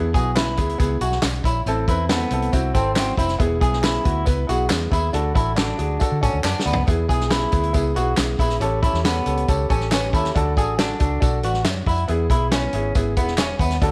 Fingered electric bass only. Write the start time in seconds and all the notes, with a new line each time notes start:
Already playing: E2
0.14 B1
0.58 D2
0.80 C#2
1.01 B1
1.23 B1
1.44 A#1
1.66 A1
1.88 E2
2.31 C2
2.53 C2
2.75 G#1
3.17 F1
3.40 E1
3.61 B1
4.05 D2
4.27 C#2
4.49 B1
4.70 E2
4.92 D#2
5.14 D2
5.35 A1
5.79 D2
6.12 D3
6.23 A2
6.33 D2
6.44 F#2
6.66 D2
6.77 C#2
6.88 E2
7.09 B1
7.53 D2
7.74 C#2
7.96 B1
8.18 B1
8.39 A#1
8.60 A1
8.93 E2
9.26 C#2
9.49 C#2
9.70 A1
10.13 D#2
10.35 D2
10.57 A1
11.01 C#2
11.22 B1
11.43 A1
11.66 F#2
11.86 F2
12.09 E2
12.30 B1
12.73 G#1
12.96 G#1
13.17 E1
13.59 D#2
13.82 D2